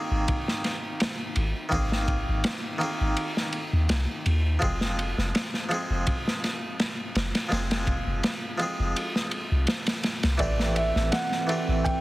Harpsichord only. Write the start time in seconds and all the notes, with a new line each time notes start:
Already playing: D#3 A#3 C4 G#4
1.69 D#3 A#3 C4
1.74 G#4
2.78 D#3 A#3 C4
2.83 G#4
4.59 F3 G#3 C4
4.64 G#4
5.69 F3 G#3 C4
5.74 G#4
7.49 F3 G#3 C4
7.53 G#4
8.58 F3 G#3 C4
8.62 G#4
10.38 E3 A3 C4
10.42 G4
11.47 E3 A3 C4
11.52 G4